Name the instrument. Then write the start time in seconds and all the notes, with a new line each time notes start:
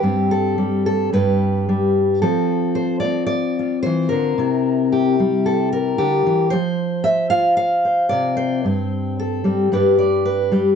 steel-string acoustic guitar
Already playing: G4
0.03 G2 G3 C4
0.31 A4
0.58 G3
0.86 A4
1.13 G2 G3 G4 B4
1.69 G3
2.22 F3 C4 F4 A4
2.75 C5
3.00 D5
3.04 C4
3.26 D5
3.59 F4
3.83 E3 C5
4.09 D3 A#4
4.38 C3 E4
4.92 G4
5.20 G3
5.46 A4
5.73 A#4
5.98 D3 G4
6.26 E3
6.50 F3 C5
7.04 E5
7.30 F4 F5
7.57 F5
7.85 C5
8.09 C3 D5
8.37 C5
8.64 G2 C4
9.19 A4
9.44 G3 C4
9.72 G2 G3 G4 B4
9.99 D5
10.25 B4
10.52 G3 G4